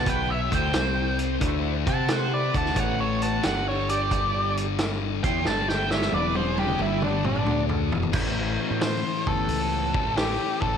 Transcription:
Already playing: fingered electric bass B1, distorted electric guitar B2 F#3 B3, tonewheel organ B3 F#4 B4
0.06 lead electric guitar B4 G5, kick, closed hi-hat
0.30 lead electric guitar C#5 E5
0.50 fingered electric bass D2, distorted electric guitar D3 A3 D4, tonewheel organ E4 F#4 C5, lead electric guitar C5, kick, closed hi-hat
0.55 lead electric guitar G5
0.73 fingered electric bass C2, distorted electric guitar C3 G3 C4, tonewheel organ C4 G4 C5, snare, closed hi-hat
1.19 tonewheel organ C4 G4 C5, closed hi-hat
1.40 fingered electric bass D2, distorted electric guitar D3 A3 D4, tonewheel organ E4 F#4 C5, kick, closed hi-hat
1.86 fingered electric bass C3, tonewheel organ C4 G4 C5, distorted electric guitar C4 G4 C5, lead electric guitar F#5 A5, kick, closed hi-hat
2.08 lead electric guitar C5 F#5, snare, closed hi-hat
2.34 lead electric guitar B4 D5
2.54 fingered electric bass D2, distorted electric guitar D3 A3 D4, tonewheel organ C4 E4 F#4, lead electric guitar F#5 A5, kick, closed hi-hat
2.66 snare
2.76 fingered electric bass A1, distorted electric guitar A2 E3 A3, tonewheel organ B3 C#4 G4, lead electric guitar C#5, kick, closed hi-hat
2.80 lead electric guitar F#5
3.00 lead electric guitar A4 C#5
3.22 tonewheel organ B3 C#4 G4, lead electric guitar F#5 A5, closed hi-hat
3.43 fingered electric bass G1, distorted electric guitar G2 D3 G3, tonewheel organ G3 D4 G4, lead electric guitar D5 F#5, snare, closed hi-hat
3.68 lead electric guitar A4 C#5
3.89 tonewheel organ G3 D4 G4, lead electric guitar G4 D5, closed hi-hat
4.11 kick, closed hi-hat
4.57 closed hi-hat
4.79 snare, closed hi-hat
5.23 fingered electric bass E2, distorted electric guitar E3 B3 E4, tonewheel organ B3 C#4 G4, lead electric guitar G5 C6, kick, closed hi-hat
5.45 fingered electric bass G1, distorted electric guitar G2 D3 G3, tonewheel organ G3 D4 G4, lead electric guitar A5, snare
5.50 lead electric guitar D5
5.68 lead electric guitar E5 G5, snare
5.90 tonewheel organ G3 D4 G4, lead electric guitar C#5 E5, snare
6.01 snare
6.12 fingered electric bass E1, distorted electric guitar E2 B2 E3, tonewheel organ G#3 D4 F#4, lead electric guitar B4 D5, high tom
6.35 lead electric guitar G#4 C5, high tom
6.58 tonewheel organ G#3 D4 G#4, lead electric guitar D4 G4, high tom
6.68 mid tom
6.78 fingered electric bass G1, distorted electric guitar G2 D3 G3, tonewheel organ G3 D4 G4, lead electric guitar G3 E4, mid tom
7.02 lead electric guitar B3 D4, mid tom
7.24 lead electric guitar B3 D4, mid tom
7.36 mid tom
7.45 fingered electric bass D2, distorted electric guitar D3 A3 D4, tonewheel organ D4 F#4 G#4, mid tom
7.69 floor tom
7.92 fingered electric bass E1, distorted electric guitar E2 B2 E3, floor tom
8.03 floor tom
8.12 fingered electric bass A1, distorted electric guitar A2 E3 A3 C#4 E4, tonewheel organ B3 C#4 G4, kick, crash
8.60 tonewheel organ B3 C#4 F#4
8.71 fingered electric bass A2
8.81 lead electric guitar C5, snare, open hi-hat
9.27 fingered electric bass G1, tonewheel organ B3 C#4 G4, lead electric guitar A4, kick
9.48 fingered electric bass C#2, open hi-hat
9.93 distorted electric guitar A2 E3 A3 C#4 E4, kick
10.05 fingered electric bass A1
10.14 distorted electric guitar A2 E3 A3 C#4 E4, lead electric guitar G4, snare, open hi-hat
10.61 fingered electric bass A1, lead electric guitar A4, kick

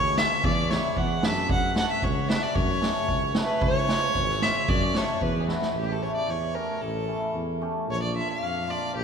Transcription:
Already playing: tuba D2, hammered dulcimer G#3, violin C#5
0.16 hammered dulcimer G#3 C#4 F4, violin E5, snare
0.44 tuba E2, violin D5, kick
0.68 hammered dulcimer G#3 B3 E4, violin C#5, snare
0.96 tuba E2, violin F#5, kick
1.21 tuba F#2, hammered dulcimer G#3 B3 D4, violin E5, snare
1.49 tuba F#2, violin F#5, kick
1.75 hammered dulcimer A3 C#4 F#4, violin F#5, snare
1.91 violin E5
2.02 tuba C#2, violin C#5, kick
2.28 hammered dulcimer A3 C#4 F#4, violin E5, snare
2.43 violin D5
2.55 tuba F#2, violin C#5, kick
2.81 hammered dulcimer A3 C#4 G#4, snare
3.08 tuba C#2, kick
3.34 hammered dulcimer A3 C#4 E4, snare
3.45 violin B4
3.61 tuba C#2, violin C#5, kick
3.88 hammered dulcimer G#3 C#4 F4, snare
4.15 tuba G#1, kick
4.29 snare
4.41 hammered dulcimer G#3 C#4 F4, violin E5, snare
4.68 tuba F#2, violin D5, kick
4.93 hammered dulcimer A3 C#4 F#4, violin C#5, snare
5.21 tuba E2, violin B4, kick
5.40 violin G#4
5.47 hammered dulcimer G#3 B3 E4, violin F#4, snare
5.62 snare
5.75 tuba A1, violin G4
5.92 violin A4
6.02 hammered dulcimer A3 C#4 E4, violin C#5
6.16 violin D5
6.28 tuba E2, violin C#5
6.54 hammered dulcimer A3 C#4 G4, violin A#4
6.81 tuba A1, violin A4
7.07 hammered dulcimer A3 C#4 E4
7.35 tuba E2
7.61 hammered dulcimer A3 C#4 G4
7.88 tuba A#1, violin C#5
8.02 violin D5
8.15 hammered dulcimer A#3 D4 F4, violin E5
8.28 violin F5
8.41 tuba F2
8.68 hammered dulcimer A#3 D4 F4, violin D5
8.95 tuba A#1, violin G4

